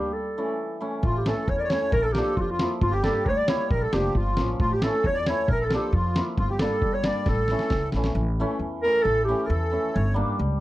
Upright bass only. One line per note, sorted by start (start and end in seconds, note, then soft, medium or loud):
1.03 1.30 A1 loud
1.48 1.75 E2 loud
1.92 2.19 A#1 loud
2.37 2.64 F2 medium
2.82 3.09 G1 loud
3.26 3.53 D2 medium
3.70 3.84 A#1 medium
3.93 4.14 F1 medium
4.14 4.35 G1 medium
4.38 4.58 A1 medium
4.60 4.87 A1 medium
5.04 5.31 E2 medium
5.48 5.75 A#1 medium
5.93 6.20 F2 medium
6.38 6.65 G1 loud
6.82 7.09 G1 medium
7.26 7.53 A1 medium
7.71 7.91 C#2 medium
7.94 8.14 A1 medium
8.15 8.42 A1 loud
8.59 8.86 E2 medium
9.05 9.32 A1 medium
9.50 9.76 E2 loud
9.96 10.22 G1 loud
10.39 10.60 C#2 medium